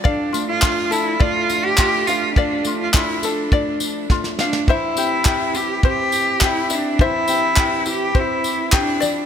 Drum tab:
TB |--x---x---x---x-|--x---x---x-----|--x---x---x---x-|--x---x---x---x-|
CP |----x-------x---|----x-----------|----x-------x---|----x-------x---|
SD |----------------|------------oooo|----------------|----------------|
BD |o---o---o---o---|o---o---o---o---|o---o---o---o---|o---o---o---o---|